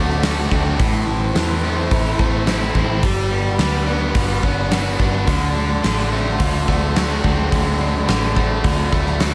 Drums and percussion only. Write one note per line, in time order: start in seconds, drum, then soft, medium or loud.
0.10 snare soft
0.23 snare loud
0.23 open hi-hat medium
0.51 kick medium
0.80 kick loud
0.80 open hi-hat medium
1.36 snare medium
1.36 open hi-hat medium
1.91 kick loud
1.91 open hi-hat medium
2.19 kick medium
2.47 snare loud
2.47 open hi-hat soft
2.75 kick medium
3.03 kick loud
3.03 open hi-hat medium
3.59 snare loud
3.59 open hi-hat soft
4.15 kick loud
4.15 open hi-hat medium
4.43 kick medium
4.71 snare loud
4.71 open hi-hat medium
5.00 kick medium
5.27 kick loud
5.27 open hi-hat medium
5.84 snare loud
5.84 open hi-hat medium
5.99 snare soft
6.40 kick loud
6.40 open hi-hat medium
6.68 kick medium
6.96 snare loud
6.96 open hi-hat soft
7.24 kick medium
7.52 kick medium
7.52 open hi-hat soft
8.08 snare loud
8.08 open hi-hat soft
8.36 kick medium
8.64 kick loud
8.64 open hi-hat medium
8.93 kick medium
9.07 snare soft
9.20 snare medium
9.20 open hi-hat medium